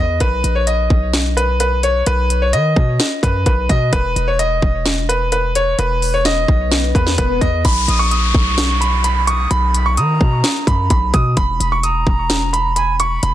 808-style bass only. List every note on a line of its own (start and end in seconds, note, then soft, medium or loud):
0.00 0.20 E2 loud
0.21 0.43 B1 loud
0.44 0.88 A#1 loud
0.90 2.03 B1 loud
2.07 2.55 B1 loud
2.53 2.75 D#3 loud
2.76 2.99 B2 loud
3.23 3.45 F#2 loud
3.46 3.69 B1 loud
3.69 3.92 B2 loud
3.93 4.15 E1 loud
4.16 4.61 E1 loud
4.62 5.75 E1 loud
5.79 6.46 E1 loud
6.48 6.93 B1 loud
6.95 7.17 E2 loud
7.18 7.41 E1 loud
7.41 7.64 E2 loud
7.65 7.87 B1 loud
7.88 8.33 A#1 loud
8.35 9.47 B1 loud
9.51 9.99 B1 loud
9.97 10.19 D#3 loud
10.21 10.43 B2 loud
10.67 10.89 F#2 loud
10.90 11.13 B1 loud
11.14 11.36 B2 loud
11.37 11.59 E1 loud
11.60 12.05 E1 loud
12.07 13.19 E1 loud
13.23 13.34 E1 loud